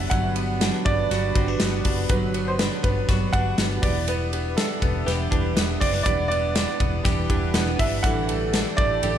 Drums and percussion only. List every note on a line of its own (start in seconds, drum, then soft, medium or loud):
0.11 kick loud
0.11 hi-hat pedal medium
0.11 ride medium
0.36 ride medium
0.61 snare loud
0.61 ride medium
0.86 kick loud
0.86 ride soft
1.11 snare soft
1.11 ride medium
1.36 kick medium
1.36 ride medium
1.60 snare loud
1.60 ride medium
1.85 kick medium
1.85 open hi-hat medium
1.85 ride medium
2.09 kick loud
2.09 hi-hat pedal medium
2.09 ride medium
2.34 ride medium
2.59 snare loud
2.59 ride medium
2.84 kick medium
2.84 ride soft
3.09 kick loud
3.09 snare soft
3.09 ride medium
3.33 kick medium
3.33 ride medium
3.58 snare loud
3.58 ride medium
3.83 kick loud
3.83 open hi-hat medium
3.83 ride medium
4.08 hi-hat pedal medium
4.08 ride medium
4.33 ride medium
4.58 snare loud
4.58 ride medium
4.82 kick medium
4.82 ride soft
5.08 snare soft
5.08 ride medium
5.32 kick medium
5.32 ride soft
5.57 snare loud
5.57 ride medium
5.81 kick medium
5.81 open hi-hat medium
5.81 ride medium
6.06 kick loud
6.06 hi-hat pedal medium
6.06 ride medium
6.31 ride medium
6.55 snare loud
6.55 ride medium
6.80 kick loud
6.80 ride soft
7.05 kick loud
7.05 snare soft
7.05 ride medium
7.30 kick medium
7.30 ride medium
7.54 snare loud
7.54 ride medium
7.79 kick medium
7.79 open hi-hat medium
7.79 ride medium
8.04 kick loud
8.04 hi-hat pedal medium
8.04 ride medium
8.29 ride medium
8.53 snare loud
8.53 ride medium
8.78 kick loud
8.78 ride medium
9.03 ride medium